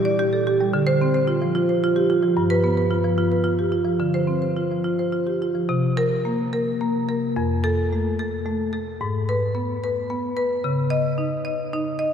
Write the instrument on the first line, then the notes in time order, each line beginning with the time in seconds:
marimba
Already playing: A#2 G4
0.05 D5
0.19 G4
0.33 A4
0.47 G4
0.60 G3
0.74 D3
0.87 C5
1.01 C4
1.14 C5
1.28 F4
1.42 F3
1.55 F4
1.69 C5
1.84 F4
1.96 G4
2.10 F4
2.23 F3
2.37 G2
2.50 B4
2.64 B3
2.77 B4
2.91 F4
3.04 F3
3.18 F4
3.32 B4
3.44 F4
3.59 G4
3.72 F4
3.85 F3
4.00 D3
4.14 C5
4.27 C4
4.42 C5
4.57 F4
4.71 F3
4.84 F4
4.99 C5
5.12 F4
5.27 G4
5.42 F4
5.55 F3
5.69 C3
5.97 A#4
6.25 A#3
6.53 A#4
6.81 A#3
7.09 A#4
7.36 F2
7.64 A4
7.93 A3
8.19 A4
8.46 A3
8.73 A4
9.01 G#2
9.29 B4
9.55 B3
9.84 B4
10.10 B3
10.37 B4
10.64 C#3
10.90 D#5
11.18 D#4
11.45 D#5
11.73 D#4
11.99 D#5